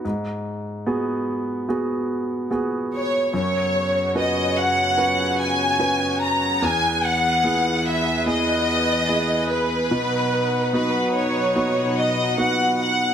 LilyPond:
<<
  \new Staff \with { instrumentName = "Violin section" } { \time 4/4 \key gis \minor \tempo 4 = 73 r2. r8 cis''8 | cis''4 dis''8 fis''4 gis''4 ais''8 | gis''8 fis''4 e''8 dis''4. b'8~ | b'4 b'8 cis''4 dis''8 fis''8 fis''8 | }
  \new Staff \with { instrumentName = "Grand piano" } { \time 4/4 \key gis \minor gis,4 <b fis' gis'>4 <b fis' gis'>4 <b fis' gis'>4 | fis,4 <cis' fis' b'>4 <cis' fis' b'>4 <cis' fis' b'>4 | e,4 <b e' gis'>4 <b e' gis'>4 <b e' gis'>4 | b,4 <b dis' fis'>4 <b dis' fis'>4 <b dis' fis'>4 | }
  \new Staff \with { instrumentName = "String section" } { \time 4/4 \key gis \minor << { r1 | <fis, cis fis' cis''>1 | <e, e gis' b'>1 | <b, fis fis''>1 | } \\ { r1 | b1~ | b1 | dis'1 | } >> }
>>